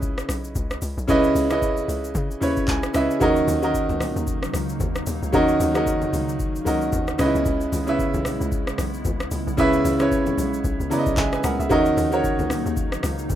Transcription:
Already playing: log drum bass C#2, grand piano C#3 C#4 E4 B4 D#5
0.02 kick, shaker
0.18 cross-stick, shaker
0.29 log drum bass B1, cross-stick, open hi-hat, shaker
0.44 shaker
0.55 log drum bass C#2, kick, shaker
0.71 cross-stick, shaker
0.82 log drum bass C#2, open hi-hat, shaker
0.97 log drum bass B1, shaker
1.07 log drum bass C#2, grand piano C#3 C#4 E4 B4 D#5, kick, shaker
1.24 shaker
1.35 log drum bass C#2, open hi-hat, shaker
1.50 grand piano C#3 C#4 E4 B4 D#5, cross-stick, shaker
1.62 kick, shaker
1.77 shaker
1.88 log drum bass C#2, open hi-hat, shaker
2.04 shaker
2.15 log drum bass C#3, kick, shaker
2.31 shaker
2.40 log drum bass D#2, grand piano C#3 C#4 E4 B4 C#5, open hi-hat, shaker
2.57 kick, shaker
2.68 log drum bass C#2, grand piano G#5, kick, clap, shaker
2.83 cross-stick, shaker
2.93 log drum bass C#2, grand piano C#3 C#4 E4 B4 D#5 E5, cross-stick, open hi-hat, shaker
3.11 shaker
3.20 log drum bass D#2, analog synth pad C#3 F#3 A#3 D#4, grand piano D#3 C#4 F#4 A#4 D#5, kick, shaker
3.36 shaker
3.48 log drum bass D#2, open hi-hat, high conga, shaker
3.62 grand piano D#3 C#4 F#4 A#4 D#5, shaker
3.74 kick, shaker
3.89 log drum bass C#2, high conga, shaker
4.00 cross-stick, open hi-hat, low conga, shaker
4.16 log drum bass D#2, shaker
4.27 kick, shaker
4.43 cross-stick, shaker
4.54 log drum bass C#2, cross-stick, open hi-hat, high conga, shaker
4.69 shaker
4.80 log drum bass D#2, kick, high conga, shaker
4.95 cross-stick, shaker
5.07 log drum bass D#2, open hi-hat, low conga, shaker
5.22 log drum bass C#2, shaker
5.32 log drum bass D#2, grand piano D#3 C#4 F#4 A#4 D#5, kick, shaker
5.48 shaker
5.60 log drum bass D#2, open hi-hat, high conga, shaker
5.74 grand piano D#3 C#4 F#4 A#4 D#5, cross-stick, shaker
5.87 kick, shaker
6.02 high conga, shaker
6.13 log drum bass C#2, open hi-hat, low conga, shaker
6.29 shaker
6.39 kick, shaker
6.56 shaker
6.65 log drum bass C#2, grand piano D#3 C#4 F#4 A#4 D#5, open hi-hat, high conga, shaker
6.81 shaker
6.92 log drum bass D#2, kick, high conga, shaker
7.08 cross-stick, shaker
7.18 log drum bass C#2, grand piano C#3 C#4 D#4 B4 D#5, analog synth pad C#3 G#3 B3 E4, cross-stick, open hi-hat, low conga, shaker
7.26 grand piano E4
7.35 log drum bass C#2, shaker
7.46 log drum bass C#2, kick, shaker
7.61 shaker
7.72 log drum bass C#2, open hi-hat, high conga, shaker
7.87 grand piano C#3 C#4 E4 B4 E5, shaker
7.99 kick, shaker
8.14 log drum bass B1, high conga, shaker
8.25 cross-stick, open hi-hat, low conga, shaker
8.41 log drum bass C#2, shaker
8.52 kick, shaker
8.67 cross-stick, shaker
8.78 log drum bass B1, cross-stick, open hi-hat, high conga, shaker
8.94 shaker
9.05 log drum bass C#2, kick, high conga, shaker
9.20 cross-stick, shaker
9.31 log drum bass C#2, open hi-hat, low conga, shaker
9.47 log drum bass B1, shaker
9.57 log drum bass C#2, grand piano C#3 C#4 E4 B4 E5, kick, shaker
9.73 shaker
9.85 log drum bass C#2, open hi-hat, high conga, shaker
9.99 grand piano C#3 C#4 E4 B4 C#5, cross-stick, shaker
10.11 kick, shaker
10.26 high conga, shaker
10.38 log drum bass B1, open hi-hat, low conga, shaker
10.54 shaker
10.64 log drum bass B1, kick, shaker
10.80 log drum bass C#2, shaker
10.90 grand piano C#3 C#4 E4 B4 D5 A#5, open hi-hat, high conga, shaker
10.99 grand piano D#5
11.06 log drum bass B1, kick, shaker
11.17 log drum bass B1, grand piano G#4 E5 G#5, kick, clap, high conga, shaker
11.33 grand piano B4 G#5, cross-stick, shaker
11.44 log drum bass C#2, grand piano A#4 F#5, cross-stick, open hi-hat, low conga, shaker
11.59 log drum bass C#2, grand piano G#4 E5, shaker
11.69 log drum bass D#2, grand piano D#3 C#4 F#4 A#4 D#5, analog synth pad F#3 A#3 D#4, kick, shaker
11.86 shaker
11.97 log drum bass D#2, open hi-hat, high conga, shaker
12.11 grand piano D#3 C#4 F#4 A#4 C#5, shaker
12.24 kick, shaker
12.39 log drum bass C#2, high conga, shaker
12.50 cross-stick, open hi-hat, low conga, shaker
12.66 log drum bass D#2, shaker
12.77 kick, shaker
12.92 cross-stick, shaker
13.03 log drum bass C#2, cross-stick, open hi-hat, high conga, shaker
13.19 shaker
13.29 log drum bass D#2, kick, high conga, shaker

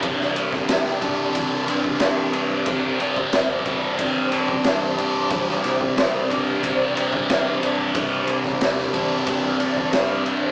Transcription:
Already playing: fingered electric bass C1, distorted electric guitar C3 G3 D4, string machine C4 G4 D5
0.02 distorted electric guitar C2, kick, ride
0.21 snare
0.36 distorted electric guitar C3, ride
0.53 kick, snare
0.69 distorted electric guitar G3, snare, ride
0.86 snare
1.02 fingered electric bass G1, distorted electric guitar D4, kick, ride
1.35 distorted electric guitar C3, kick, ride
1.68 distorted electric guitar D4, ride
1.84 fingered electric bass C1, kick
2.00 distorted electric guitar G3, snare, ride
2.33 distorted electric guitar D4, ride
2.50 fingered electric bass C1
2.66 fingered electric bass C1, distorted electric guitar C2, kick, ride
2.99 distorted electric guitar C3, ride
3.16 kick
3.32 fingered electric bass D#1, distorted electric guitar G3, snare, ride
3.65 fingered electric bass G1, distorted electric guitar D4, kick, ride
3.98 distorted electric guitar C3, kick, ride
4.16 fingered electric bass C1
4.32 distorted electric guitar D4, ride
4.48 kick
4.64 fingered electric bass G1, distorted electric guitar G3, snare, ride
4.98 distorted electric guitar D4, ride
5.14 fingered electric bass C1
5.30 distorted electric guitar C2, kick, ride
5.49 snare
5.64 distorted electric guitar C3, snare, ride
5.81 kick
5.96 distorted electric guitar G3, snare, ride
6.29 fingered electric bass G1, distorted electric guitar D4, kick, ride
6.62 distorted electric guitar C3, kick, ride
6.95 distorted electric guitar D4, ride
7.13 fingered electric bass C1, kick
7.28 distorted electric guitar G3, snare, ride
7.61 distorted electric guitar D4, ride
7.78 fingered electric bass C1
7.94 fingered electric bass C1, distorted electric guitar C2, kick, ride
8.27 distorted electric guitar C3, ride
8.44 kick, snare
8.60 fingered electric bass D#1, distorted electric guitar G3, snare, ride
8.78 snare
8.93 fingered electric bass G1, distorted electric guitar D4, kick, ride
9.27 distorted electric guitar C3, kick, ride
9.42 fingered electric bass C1
9.59 distorted electric guitar D4, ride
9.76 kick
9.92 fingered electric bass G1, distorted electric guitar G3, snare, ride
10.25 distorted electric guitar D4, ride
10.42 fingered electric bass C1

